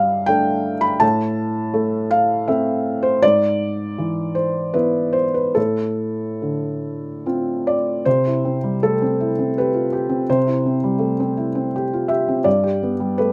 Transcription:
0.00 0.98 G2 medium
0.00 0.72 G3 medium
0.00 1.05 E5 medium
0.00 0.28 F5 medium
0.26 0.98 A3 medium
0.26 0.98 D4 medium
0.26 0.83 G5 medium
0.81 1.01 B5 medium
1.00 3.18 A2 medium
1.00 2.11 A5 loud
1.74 2.47 A3 medium
2.11 2.48 F5 medium
2.48 3.18 A3 soft
2.48 3.18 C4 medium
2.48 3.03 E5 medium
3.03 3.22 C5 medium
3.22 5.53 G#2 medium
3.22 4.35 D5 loud
3.98 5.23 E3 soft
4.35 4.74 C5 medium
4.74 5.52 B3 soft
4.74 5.52 E4 soft
4.74 5.14 B4 medium
5.13 5.34 C5 medium
5.34 5.56 B4 medium
5.55 8.01 A2 soft
5.55 7.24 A4 medium
6.42 7.75 D3 soft
7.26 8.02 C4 soft
7.26 8.02 F4 soft
7.67 8.06 D5 medium
8.05 10.24 C3 medium
8.05 8.81 C5 medium
8.26 8.55 E4 soft
8.45 8.74 C4 soft
8.64 8.93 G3 soft
8.83 9.01 A3 soft
8.83 9.56 A4 medium
9.02 9.31 C4 soft
9.20 9.49 E4 soft
9.39 9.67 C4 soft
9.58 9.86 G4 soft
9.58 10.29 B4 medium
9.74 9.92 F4 soft
9.93 10.21 G4 medium
10.09 10.38 C4 soft
10.30 12.43 C3 medium
10.30 11.74 C5 medium
10.47 10.75 E4 soft
10.66 10.94 C4 soft
10.84 11.12 G3 soft
10.99 11.18 A3 soft
11.20 11.48 C4 soft
11.37 11.66 E4 soft
11.55 11.84 C4 soft
11.76 12.03 G4 soft
11.93 12.11 F4 soft
12.08 12.39 G4 medium
12.08 12.46 E5 medium
12.28 12.46 C4 soft
12.44 13.32 G2 medium
12.44 13.18 D5 medium
12.64 12.93 G4 soft
12.83 13.12 B3 soft
13.00 13.30 G3 soft
13.18 13.32 A3 soft
13.18 13.32 B4 medium

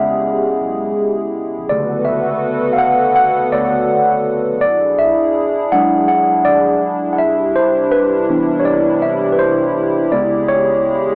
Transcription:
0.00 1.67 C#3 medium
0.00 1.71 C#3 medium
0.00 1.67 G#3 medium
0.00 1.72 G#3 medium
0.00 1.72 B3 soft
0.00 1.72 C#4 medium
0.00 1.65 E4 medium
0.00 1.66 G4 medium
0.00 1.67 G#4 medium
0.00 1.69 D5 loud
0.00 1.72 E5 loud
0.00 1.71 F#5 loud
0.47 0.52 B1 medium
0.60 0.93 B1 loud
1.57 1.69 A#1 medium
1.69 2.23 B1 loud
1.69 4.59 C#3 medium
1.69 3.52 D3 medium
1.69 3.52 A3 soft
1.69 4.60 B3 medium
1.69 4.59 F#4 medium
1.69 4.59 A4 medium
1.69 4.59 B4 medium
1.69 2.07 D5 medium
1.69 4.59 F#5 medium
2.05 2.76 E5 medium
2.73 2.79 F5 medium
2.78 3.14 F#5 loud
3.16 3.54 F#5 loud
3.40 3.45 D2 medium
3.52 3.85 D2 loud
3.52 3.86 D3 soft
3.52 3.86 A3 soft
3.52 3.86 C#5 medium
3.52 4.22 D5 medium
4.49 4.61 A#1 medium
4.61 5.16 B1 loud
4.61 10.07 D4 medium
4.61 11.15 E4 medium
4.61 7.16 G#4 medium
4.61 5.00 D5 loud
4.99 5.74 E5 loud
5.72 6.25 F#3 medium
5.72 6.25 G#3 medium
5.72 6.25 D4 medium
5.72 5.89 F#5 loud
6.08 6.46 F#5 medium
6.33 6.38 D2 soft
6.45 6.77 D2 medium
6.45 7.15 D5 loud
7.13 7.18 F#5 medium
7.18 8.04 C2 loud
7.18 10.08 C3 medium
7.18 10.08 G3 medium
7.18 11.15 G4 medium
7.18 7.53 E5 loud
7.56 7.93 C5 loud
7.92 8.62 B4 medium
8.29 8.81 E3 medium
8.29 8.82 B3 medium
8.29 8.82 D4 medium
8.60 8.65 C#5 medium
8.65 8.99 D5 medium
9.02 9.34 E5 loud
9.26 9.31 C2 soft
9.32 9.38 B4 medium
9.38 9.70 C2 medium
9.38 10.14 C5 medium
10.11 10.96 C#2 loud
10.11 11.15 C#3 medium
10.11 10.65 C#3 medium
10.11 11.15 G#3 medium
10.11 10.64 G#3 medium
10.11 10.64 B3 medium
10.11 11.15 G#4 medium
10.11 10.49 D5 medium
10.49 11.15 C#5 loud

